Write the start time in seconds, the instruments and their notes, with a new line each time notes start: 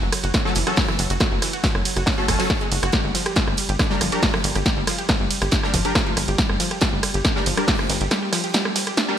0.02 analog synth bass F#1, synth arpeggio sound F#3
0.12 synth arpeggio sound F#3, cross-stick, closed hi-hat, open hi-hat, ride
0.23 analog synth bass F#1, synth arpeggio sound F#4, closed hi-hat
0.34 synth arpeggio sound C#4, kick, cross-stick, snare, closed hi-hat, ride
0.45 synth arpeggio sound F#3, synth stab F#3 C#4 A4, snare
0.55 analog synth bass F#1, synth arpeggio sound E3, closed hi-hat, open hi-hat, ride
0.67 synth stab F#3 C#4 A4, synth arpeggio sound F#4, cross-stick, closed hi-hat
0.76 synth arpeggio sound F#3, kick, snare, closed hi-hat, open hi-hat, ride
0.88 synth arpeggio sound E3, cross-stick
0.99 analog synth bass F#1, synth arpeggio sound F#3, closed hi-hat, open hi-hat, ride
1.10 analog synth bass F#1, synth arpeggio sound F#4, closed hi-hat
1.20 synth arpeggio sound F#3, kick, cross-stick, snare, closed hi-hat, ride
1.32 analog synth bass F#1, synth arpeggio sound F#3
1.42 synth arpeggio sound E3, cross-stick, snare, closed hi-hat, open hi-hat, ride
1.53 synth arpeggio sound F#4, closed hi-hat
1.64 synth arpeggio sound F#3, kick, snare, closed hi-hat, ride
1.75 analog synth bass F#1, synth arpeggio sound F#3, cross-stick
1.85 synth arpeggio sound F#3, closed hi-hat, open hi-hat, ride
1.96 analog synth bass F#1, synth arpeggio sound F#4, cross-stick, closed hi-hat
2.06 synth arpeggio sound C#4, kick, snare, closed hi-hat, open hi-hat, ride
2.18 synth stab F#3 C#4 A4, synth arpeggio sound F#3
2.28 analog synth bass F#1, synth stab F#3 C#4 A4, synth arpeggio sound G#3, kick, cross-stick, closed hi-hat, open hi-hat, ride
2.39 synth stab F#3 C#4 A4, synth arpeggio sound F#3, snare, closed hi-hat, open hi-hat
2.50 synth arpeggio sound F#3, kick, cross-stick, snare, closed hi-hat, ride
2.61 synth arpeggio sound G#3, closed hi-hat
2.71 analog synth bass F#1, synth arpeggio sound F#4, closed hi-hat, open hi-hat, ride
2.83 analog synth bass F#1, synth arpeggio sound F#4, cross-stick, closed hi-hat
2.92 synth arpeggio sound G3, kick, cross-stick, snare, closed hi-hat, ride
3.04 analog synth bass G1, synth arpeggio sound G3
3.15 synth arpeggio sound F3, snare, closed hi-hat, open hi-hat, ride
3.26 synth arpeggio sound G4, cross-stick, closed hi-hat
3.36 synth arpeggio sound G3, kick, snare, closed hi-hat, ride
3.47 analog synth bass G1, synth arpeggio sound G3, cross-stick
3.57 synth arpeggio sound G3, closed hi-hat, open hi-hat, ride
3.69 analog synth bass G1, synth arpeggio sound G4, closed hi-hat
3.79 synth arpeggio sound D4, kick, cross-stick, snare, closed hi-hat, ride
3.90 synth arpeggio sound G3, synth stab G3 D4 A#4, snare
4.01 analog synth bass G1, synth arpeggio sound F3, cross-stick, closed hi-hat, open hi-hat, ride
4.12 synth stab G3 D4 A#4, synth arpeggio sound G4, closed hi-hat
4.22 synth arpeggio sound G3, kick, snare, closed hi-hat, open hi-hat, ride
4.34 synth arpeggio sound F3, cross-stick
4.44 analog synth bass G1, synth arpeggio sound G3, closed hi-hat, open hi-hat, ride
4.55 analog synth bass G1, synth arpeggio sound G4, cross-stick, closed hi-hat
4.66 synth arpeggio sound G3, kick, snare, closed hi-hat, ride
4.77 analog synth bass G1, synth arpeggio sound G3
4.87 synth arpeggio sound F3, cross-stick, snare, closed hi-hat, open hi-hat, ride
4.98 synth arpeggio sound G4, closed hi-hat
5.09 synth arpeggio sound G3, kick, cross-stick, snare, closed hi-hat, ride
5.20 analog synth bass G1, synth arpeggio sound G3
5.30 synth arpeggio sound G3, closed hi-hat, open hi-hat, ride
5.42 analog synth bass G1, synth arpeggio sound G4, cross-stick, closed hi-hat
5.51 synth arpeggio sound D4, kick, snare, closed hi-hat, ride
5.63 synth stab G3 D4 A#4, synth arpeggio sound G3, cross-stick, snare
5.74 analog synth bass G1, synth arpeggio sound F3, kick, closed hi-hat, open hi-hat, ride
5.85 synth stab G3 D4 A#4, synth arpeggio sound G4, closed hi-hat
5.95 synth arpeggio sound G3, kick, cross-stick, snare, closed hi-hat, ride
6.07 synth arpeggio sound F3
6.17 analog synth bass G1, synth arpeggio sound G3, cross-stick, closed hi-hat, open hi-hat, ride
6.28 analog synth bass G1, synth arpeggio sound G4, closed hi-hat
6.38 synth arpeggio sound G3, kick, snare, closed hi-hat, ride
6.49 analog synth bass G1, synth arpeggio sound G3, cross-stick
6.60 synth arpeggio sound F3, snare, closed hi-hat, open hi-hat, ride
6.71 synth arpeggio sound G4, cross-stick, closed hi-hat
6.81 synth arpeggio sound G3, kick, snare, closed hi-hat, ride
6.93 analog synth bass G1, synth arpeggio sound G3
7.03 synth arpeggio sound G3, cross-stick, closed hi-hat, open hi-hat, ride
7.14 analog synth bass G1, synth arpeggio sound G4, closed hi-hat
7.24 synth arpeggio sound D4, kick, cross-stick, snare, closed hi-hat, ride
7.36 synth arpeggio sound G3, synth stab G3 D4 A#4, snare
7.46 analog synth bass G1, synth arpeggio sound F3, closed hi-hat, open hi-hat, ride
7.57 synth stab G3 D4 A#4, synth arpeggio sound G4, cross-stick, closed hi-hat
7.68 synth arpeggio sound G3, kick, snare, closed hi-hat, open hi-hat, ride
7.79 synth arpeggio sound F3, cross-stick
7.89 analog synth bass G1, synth arpeggio sound G3, snare, closed hi-hat, open hi-hat, ride
8.01 analog synth bass G1, synth arpeggio sound G4, closed hi-hat
8.11 synth arpeggio sound G3, cross-stick, snare, closed hi-hat, ride
8.22 synth arpeggio sound G3
8.33 synth arpeggio sound F3, cross-stick, snare, open hi-hat, ride
8.44 synth arpeggio sound G4, closed hi-hat
8.54 synth arpeggio sound G3, snare, closed hi-hat, ride
8.65 synth arpeggio sound G3, cross-stick
8.76 synth arpeggio sound G3, snare, closed hi-hat, open hi-hat, ride
8.87 synth arpeggio sound G4, cross-stick, closed hi-hat
8.97 synth arpeggio sound D4, snare, closed hi-hat, ride
9.08 synth stab G3 D4 A#4, synth arpeggio sound G3